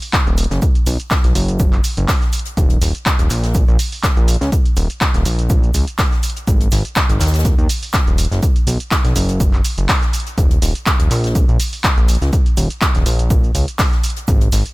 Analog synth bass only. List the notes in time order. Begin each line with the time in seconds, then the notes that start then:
0.27 D#1
0.51 F#1
0.87 B1
1.24 B1
1.35 F#1
1.60 F#1
1.97 F#1
2.57 D#1
2.82 D#1
3.19 D#1
3.30 A#1
3.68 A#1
4.17 A#1
4.41 C#2
4.77 D#1
5.14 D#1
5.25 A#1
5.50 A#1
5.74 C#2
6.47 G#1
6.72 G#1
7.09 G#1
7.21 D#2
7.58 D#2
8.07 D#1
8.31 F#1
8.67 B1
9.05 B1
9.16 F#1
9.40 F#1
9.78 F#1
10.38 D#1
10.62 D#1
11.00 D#1
11.11 A#1
11.48 A#1
11.97 A#1
12.22 C#2
12.57 D#1
12.95 D#1
13.06 A#1
13.30 A#1
13.55 C#2
14.28 G#1
14.52 G#1